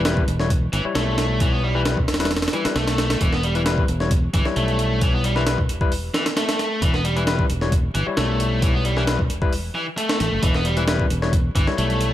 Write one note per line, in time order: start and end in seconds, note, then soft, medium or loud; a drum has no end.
0.00 0.22 E1 loud
0.05 0.23 G3 medium
0.05 0.23 E4 medium
0.05 0.23 B4 medium
0.05 snare loud
0.05 closed hi-hat medium
0.17 kick medium
0.28 0.67 E1 loud
0.28 closed hi-hat medium
0.40 0.50 G3 medium
0.40 0.50 E4 medium
0.40 0.50 C#5 loud
0.40 snare soft
0.50 kick loud
0.50 closed hi-hat medium
0.73 0.84 G1 medium
0.73 0.83 E3 medium
0.73 closed hi-hat medium
0.85 1.72 G3 medium
0.85 1.72 E4 medium
0.85 1.72 C#5 loud
0.85 muted fingered electric bass stroke soft
0.95 2.08 B1 loud
0.95 1.39 A3 medium
0.95 snare loud
0.95 closed hi-hat medium
1.18 snare loud
1.18 closed hi-hat medium
1.40 1.52 E3 medium
1.40 kick loud
1.40 closed hi-hat medium
1.52 1.62 B3 medium
1.63 1.74 G3 medium
1.75 1.81 E3 loud
1.75 1.84 G3 medium
1.75 1.84 E4 medium
1.75 1.84 B4 loud
1.85 1.97 G3 medium
1.85 1.97 E4 medium
1.85 1.97 B4 medium
1.85 snare loud
1.85 closed hi-hat medium
1.97 kick medium
2.08 2.47 E1 medium
2.08 snare medium
2.08 closed hi-hat medium
2.14 snare medium
2.14 closed hi-hat medium
2.20 2.31 G3 loud
2.20 2.31 E4 medium
2.20 2.31 B4 loud
2.20 snare medium
2.20 closed hi-hat medium
2.25 snare medium
2.25 closed hi-hat medium
2.31 snare medium
2.31 closed hi-hat medium
2.37 snare medium
2.37 closed hi-hat medium
2.42 snare medium
2.42 closed hi-hat medium
2.48 snare medium
2.48 closed hi-hat medium
2.53 2.64 E3 medium
2.53 2.63 G3 medium
2.53 2.63 E4 medium
2.53 2.63 B4 medium
2.53 closed hi-hat medium
2.65 2.76 G3 medium
2.65 2.76 E4 medium
2.65 2.76 B4 medium
2.65 muted fingered electric bass stroke soft
2.65 snare loud
2.65 closed hi-hat medium
2.76 3.15 B1 loud
2.76 3.20 A3 medium
2.76 snare loud
2.76 closed hi-hat medium
2.88 snare loud
2.88 closed hi-hat medium
2.98 snare loud
2.98 closed hi-hat medium
3.10 snare loud
3.10 closed hi-hat medium
3.21 3.83 E1 loud
3.21 3.32 E3 medium
3.21 kick loud
3.21 closed hi-hat medium
3.33 3.42 B3 medium
3.33 snare soft
3.43 3.54 G3 medium
3.43 closed hi-hat medium
3.55 3.61 E3 loud
3.55 3.65 G3 medium
3.55 3.65 E4 medium
3.55 3.65 B4 loud
3.55 closed hi-hat soft
3.66 3.84 G3 medium
3.66 3.84 E4 medium
3.66 3.84 B4 loud
3.66 snare loud
3.66 closed hi-hat medium
3.78 kick loud
3.88 4.28 E1 medium
3.88 closed hi-hat medium
4.00 4.11 G3 medium
4.00 4.11 E4 medium
4.00 4.11 C#5 loud
4.00 snare soft
4.11 kick loud
4.11 closed hi-hat medium
4.34 4.45 G1 medium
4.34 4.44 E3 medium
4.34 kick loud
4.34 closed hi-hat medium
4.45 5.33 G3 medium
4.45 5.33 E4 medium
4.45 5.33 C#5 loud
4.45 snare soft
4.56 5.69 B1 medium
4.56 5.00 A3 medium
4.56 closed hi-hat medium
4.68 closed hi-hat soft
4.79 closed hi-hat medium
5.01 5.13 E3 medium
5.01 kick loud
5.01 closed hi-hat medium
5.14 5.23 B3 medium
5.24 5.35 G3 medium
5.24 closed hi-hat medium
5.36 5.42 E3 loud
5.36 5.45 G3 medium
5.36 5.45 E4 medium
5.36 5.45 B4 loud
5.36 snare soft
5.47 5.58 G3 medium
5.47 5.58 E4 medium
5.47 5.58 B4 medium
5.47 snare loud
5.47 closed hi-hat medium
5.58 kick medium
5.69 6.08 E1 loud
5.69 closed hi-hat medium
5.81 5.91 G3 medium
5.81 5.92 E4 medium
5.81 5.91 B4 loud
5.81 kick loud
5.92 open hi-hat medium
6.14 6.25 E3 medium
6.14 snare loud
6.14 closed hi-hat medium
6.26 snare loud
6.26 closed hi-hat medium
6.37 6.81 A3 medium
6.37 snare loud
6.37 closed hi-hat medium
6.49 snare loud
6.49 closed hi-hat medium
6.59 snare medium
6.59 closed hi-hat medium
6.82 7.44 E1 loud
6.82 6.93 E3 medium
6.82 kick loud
6.82 closed hi-hat medium
6.94 7.03 B3 medium
6.94 snare soft
7.04 7.15 G3 medium
7.04 closed hi-hat medium
7.16 7.22 E3 loud
7.16 7.26 G3 medium
7.16 7.26 E4 medium
7.16 7.26 B4 medium
7.16 closed hi-hat soft
7.27 7.45 G3 medium
7.27 7.45 E4 medium
7.27 7.45 B4 loud
7.27 snare loud
7.27 closed hi-hat medium
7.39 kick loud
7.50 7.89 E1 loud
7.50 closed hi-hat medium
7.61 7.72 G3 medium
7.61 7.72 E4 medium
7.61 7.72 C#5 loud
7.61 snare soft
7.72 kick loud
7.72 closed hi-hat medium
7.95 8.06 G1 medium
7.95 8.05 E3 medium
7.95 closed hi-hat medium
8.07 8.94 G3 medium
8.07 8.94 E4 medium
8.07 8.94 C#5 loud
8.17 9.30 B1 loud
8.17 8.61 A3 medium
8.17 snare loud
8.17 closed hi-hat medium
8.40 closed hi-hat medium
8.62 8.74 E3 medium
8.62 kick loud
8.62 closed hi-hat medium
8.74 8.84 B3 medium
8.85 8.96 G3 medium
8.85 closed hi-hat medium
8.97 9.02 E3 loud
8.97 9.06 G3 loud
8.97 9.06 E4 medium
8.97 9.06 B4 loud
8.97 snare soft
9.07 9.19 G3 medium
9.07 9.19 E4 medium
9.07 9.19 B4 medium
9.07 snare loud
9.07 closed hi-hat medium
9.19 kick medium
9.30 9.69 E1 medium
9.30 closed hi-hat medium
9.42 9.52 G3 loud
9.42 9.52 E4 medium
9.42 9.52 B4 loud
9.42 kick medium
9.53 open hi-hat medium
9.75 9.85 E3 medium
9.97 10.42 A3 medium
9.97 closed hi-hat medium
10.09 snare loud
10.20 10.28 A1 medium
10.20 snare medium
10.20 closed hi-hat medium
10.32 10.39 F#1 medium
10.43 11.05 E1 loud
10.43 10.54 E3 medium
10.43 kick loud
10.43 closed hi-hat medium
10.54 10.64 B3 medium
10.54 snare soft
10.65 10.76 G3 medium
10.65 closed hi-hat medium
10.77 10.83 E3 loud
10.77 10.86 G3 medium
10.77 10.86 E4 medium
10.77 10.86 B4 loud
10.77 closed hi-hat soft
10.88 11.06 G3 medium
10.88 11.06 E4 medium
10.88 11.06 B4 medium
10.88 snare loud
10.88 closed hi-hat medium
11.00 kick medium
11.10 11.50 E1 loud
11.10 closed hi-hat medium
11.22 11.33 G3 medium
11.22 11.33 E4 medium
11.22 11.33 C#5 loud
11.22 snare soft
11.33 kick loud
11.33 closed hi-hat medium
11.55 11.67 G1 medium
11.55 11.66 E3 medium
11.55 kick loud
11.55 closed hi-hat medium
11.67 12.13 G3 medium
11.67 12.13 E4 medium
11.67 12.13 C#5 loud
11.67 muted fingered electric bass stroke soft
11.67 snare soft
11.78 12.13 B1 loud
11.78 12.13 A3 medium
11.78 closed hi-hat medium
11.90 closed hi-hat soft
12.01 closed hi-hat medium